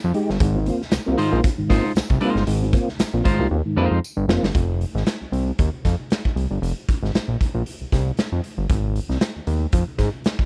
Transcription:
0.04 analog synth bass F2
0.14 tonewheel organ G#3 D#4 G4, closed hi-hat
0.30 analog synth bass G1, snare
0.40 analog synth bass G#1, tonewheel organ G#2 D#3, kick, closed hi-hat
0.55 tonewheel organ C4 F4
0.66 tonewheel organ A#3 C4 F4, closed hi-hat
0.82 snare
0.91 analog synth bass C2, snare, closed hi-hat, tambourine
1.06 analog synth bass C2, tonewheel organ A#3 C4 F4
1.18 tonewheel organ G#2 D#3, clean electric guitar G#3 D#4 F4 C5, closed hi-hat
1.32 analog synth bass A#1, tonewheel organ A#3 C4 F4
1.43 tonewheel organ C4 F4, kick, closed hi-hat
1.58 analog synth bass G#1, tonewheel organ G#2 D#3
1.69 analog synth bass G#1, clean electric guitar G#3 D#4 F4 C5, tonewheel organ A#3 C4 F4, kick, snare, open hi-hat
1.95 analog synth bass C2, snare, closed hi-hat, tambourine
2.10 analog synth bass C2, kick
2.21 clean electric guitar G#3 D#4 F4 C5, tonewheel organ A#3 C4 F4, closed hi-hat
2.35 analog synth bass G1, snare
2.47 analog synth bass G#1, tonewheel organ G#2 D#3, closed hi-hat
2.62 tonewheel organ C4 F4
2.73 tonewheel organ A#3 C4 F4, kick, closed hi-hat
2.89 snare
2.98 analog synth bass A#1, snare, closed hi-hat, tambourine
3.13 analog synth bass A#1, tonewheel organ A#3 C4 F4
3.24 tonewheel organ G#2 D#3, clean electric guitar G#3 D#4 F4 C5, kick, closed hi-hat
3.39 analog synth bass C2, tonewheel organ A#3 C4 F4
3.51 analog synth bass D#2, tonewheel organ C4 F4
3.66 tonewheel organ G#2 D#3
3.76 analog synth bass F2, clean electric guitar G#3 D#4 F4 C5, tonewheel organ A#3 C4 F4
3.91 analog synth bass F2
4.04 tambourine
4.17 analog synth bass G1
4.28 analog synth bass F1, tonewheel organ A#3 C4 F4, snare
4.43 analog synth bass G1, snare
4.55 analog synth bass F1, kick, closed hi-hat
4.81 closed hi-hat
4.95 analog synth bass G#1, snare
5.06 snare, closed hi-hat
5.21 analog synth bass C2
5.32 analog synth bass C2, closed hi-hat
5.59 analog synth bass D#2, kick, closed hi-hat
5.85 analog synth bass F2, kick, snare, closed hi-hat
6.10 snare, closed hi-hat
6.25 kick
6.36 analog synth bass C2, closed hi-hat
6.51 analog synth bass G1
6.62 analog synth bass F1, closed hi-hat
6.89 kick, closed hi-hat
7.02 analog synth bass G#1, snare
7.14 analog synth bass A#1, snare, closed hi-hat
7.28 analog synth bass A#1
7.41 kick, closed hi-hat
7.54 analog synth bass A#1
7.66 closed hi-hat
7.81 analog synth bass C2
7.92 analog synth bass C2, kick, snare, closed hi-hat
8.17 snare, closed hi-hat
8.32 analog synth bass F2
8.44 closed hi-hat
8.58 analog synth bass G1
8.70 analog synth bass G#1, kick, closed hi-hat
8.96 closed hi-hat
9.09 analog synth bass C2, snare
9.21 snare, closed hi-hat
9.36 analog synth bass D#2
9.47 analog synth bass D#2, closed hi-hat
9.72 analog synth bass F2, kick, closed hi-hat
9.98 analog synth bass G#2, kick, snare, closed hi-hat
10.24 snare, closed hi-hat
10.39 kick

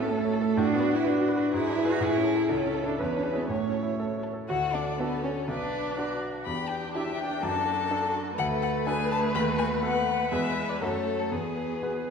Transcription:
Already playing: grand piano A2 C#4 E4, viola A4
0.00 cello B3
0.09 cello A3, grand piano A4
0.25 grand piano C#5
0.33 violin A4 E5
0.41 grand piano A4
0.57 grand piano A2, cello D4, viola F#4
0.73 grand piano B3
0.80 violin B4 D5
0.89 grand piano F#4
0.95 cello E4
1.04 cello D4, viola F#4, grand piano B4
1.21 grand piano F#4
1.28 violin B4 D5
1.36 grand piano B4
1.52 grand piano G#2, cello E4, viola G#4
1.69 grand piano D4
1.78 violin B4 D5
1.85 grand piano E4 B4
1.91 cello F#4
2.01 grand piano A2, cello E4
2.17 grand piano C#4
2.24 violin A4 C#5
2.35 grand piano E4 A4
2.49 grand piano C#2, cello C#4, viola A4
2.67 grand piano C#4
2.74 violin A4 C#5
2.84 cello D4, grand piano E4 A4
2.99 grand piano E2, cello C#4, viola B4
3.17 grand piano D4
3.23 violin G#4 D5
3.33 grand piano E4 G#4
3.37 cello B3
3.49 grand piano A2, cello A3, viola C#5
3.66 grand piano C#4
3.74 violin A4 C#5
3.83 grand piano E4
4.00 grand piano A4
4.18 grand piano C#5
4.24 violin A4 C#5
4.33 grand piano A4
4.49 grand piano D2, viola F#4, violin F#4 F#5, cello A4
4.73 violin D4 D5, viola D4
4.99 viola B3, violin B3 B4, grand piano D4 F#4 A4
5.24 viola C#4, violin C#4 C#5
5.48 grand piano B1, violin D4 D5, viola D4, cello B4
5.97 grand piano D4 F#4 B4, cello F#4
6.45 grand piano E2, viola D4, cello G4, violin G4 B5
6.69 violin G5
6.93 grand piano D4 E4 G4, cello G4, violin E5
7.19 violin G5
7.41 grand piano F#2, cello F#4, violin A4 A5
7.91 grand piano D4 A4
8.38 grand piano D2, viola A3, cello A4, violin B4 F#5
8.62 violin F#5
8.86 grand piano D4 A4 B4, cello G#4, violin G#5
9.11 violin A5
9.35 grand piano D#2, cello F#4, violin B5
9.58 violin G#5
9.81 grand piano B3 A4 B4, cello B4, violin F#5
10.31 grand piano E2 B3 G#4 B4, viola G#3, violin B4 E5
10.69 violin D5
10.81 grand piano F#2 F#3 F#4 A4, viola A3, violin A4 C#5, cello A4
11.19 violin A4
11.30 grand piano E2, viola B3, violin G#4 B4, cello G#4
11.82 grand piano B3 G#4 B4

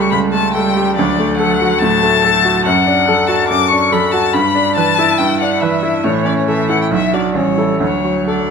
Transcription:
Already playing: grand piano C#2 A3 G4 A4, cello G3
0.01 violin C#6
0.11 grand piano C#2, violin B5
0.33 grand piano A3, violin A5
0.53 cello G3, grand piano A4, violin G5
0.77 grand piano G4
0.95 grand piano D2, cello F#3, violin D5
1.19 grand piano A3
1.37 cello F#3, grand piano A4, violin F#5
1.61 grand piano F#4
1.79 grand piano A2, cello F#3, violin A5
2.02 grand piano A3
2.24 grand piano A4
2.45 grand piano F#4
2.66 grand piano F#2, violin F#5
2.86 grand piano D4
3.08 cello F#3, grand piano A4
3.27 grand piano F#4, violin A5
3.49 grand piano F#2, violin D6
3.68 grand piano D4, violin C#6
3.92 cello F#3, grand piano A4, violin B5
4.11 grand piano F#4, violin A5
4.34 grand piano G2, violin B5
4.55 grand piano D4
4.76 cello E3, grand piano B4, violin A5
4.99 grand piano E4
5.18 grand piano G2, violin G5
5.40 grand piano D4, violin F#5
5.61 cello E3, grand piano B4, violin E5
5.83 grand piano E4
6.04 grand piano A2, cello E3, violin C#5
6.25 grand piano C#4, violin D5
6.37 violin C#5
6.47 cello E3, grand piano A4, violin E5
6.69 grand piano E4, violin F#5
6.82 violin G5
6.89 grand piano B1, cello F#3, violin E5
7.13 grand piano D4 F#4, violin D5
7.35 grand piano A1, cello G3, violin C#5
7.57 grand piano E4 A4
7.79 grand piano D2, cello F#3, violin C#5
8.04 grand piano F#3
8.26 cello F#3, grand piano A4, violin D5

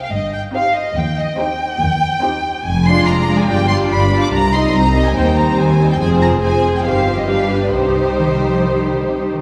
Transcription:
0.02 violin section F5
0.12 double bass section G1, cello section G2, violin section D#5
0.33 violin section G5
0.53 viola section C4 D#4, violin section G4 C5 F5
0.75 violin section D#5
0.97 double bass section D#2, cello section D#2, violin section G5
1.18 violin section D#5
1.38 viola section C4 D#4, violin section G4 C5 G5
1.81 cello section D#2, double bass section D#2
2.22 viola section C4 D#4, violin section G4 C5
2.65 double bass section F1, cello section F2, violin section G#5
2.86 viola section G#3 D4, violin section F4 D5 C6
3.06 double bass section F1, cello section F2, violin section A#5
3.27 viola section G#3 D4, violin section F4 D5
3.38 violin section G#5
3.47 double bass section G1, cello section G2, viola section G3 D4, violin section F4 D5 G5
3.68 viola section G3 D4, violin section F4 D5 C6
3.90 double bass section G1, cello section G2, violin section B5
4.11 viola section G3 D4, violin section F4 D5
4.22 violin section D6
4.32 double bass section C2, cello section C2, violin section A#5
4.53 viola section G3 C4, violin section D#4 D#5 C6
4.73 cello section C2, double bass section C2, violin section A#5
4.94 viola section G3 C4, violin section D#4 D#5
5.06 violin section G#5
5.15 cello section D#2, double bass section D#2, viola section G3 C4, violin section D#4 C5 G5
5.36 viola section G3 C4, violin section D#4 C5 A#5
5.57 cello section D#2, double bass section D#2, violin section G#5
5.79 viola section G3 C4, violin section D#4 C5
5.90 violin section G5
5.99 double bass section F1, cello section F2, viola section F3 C4, violin section G#4 C5 G#5
6.21 violin section A#5
6.41 viola section F3 C4, violin section G#4 C5 G#5
6.75 violin section G5
6.84 double bass section G1, cello section G2, viola section D#3 C4, violin section G4 C5 F5
7.05 viola section F3
7.17 violin section D#5
7.27 viola section G3 D4, violin section G4 B4 F5
7.62 violin section D5
7.72 double bass section C2, cello section C3, viola section G3 D#4, violin section G4 C5
8.19 cello section D#3
8.41 cello section F3
8.64 cello section D#3
8.97 cello section D3
9.08 cello section C3
9.31 cello section D#3

